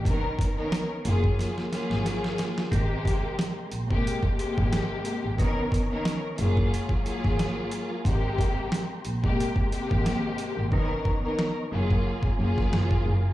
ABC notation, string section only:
X:1
M:4/4
L:1/16
Q:"Swing 16ths" 1/4=90
K:Ab
V:1 name="String section"
[^D,=B,^C^A]3 [D,B,CA]2 z [_G,_B,F_A]4 [G,B,FA]6 | [C,A,B,G]6 z [C,A,B,G]3 [C,A,B,G]6 | [^D,=B,^C^A]3 [D,B,CA]2 z [_G,_B,F_A]4 [G,B,FA]6 | [C,A,B,G]6 z [C,A,B,G]3 [C,A,B,G]6 |
[^D,=B,^C^A]3 [D,B,CA]2 z [_G,_B,F_A]4 [G,B,FA]6 |]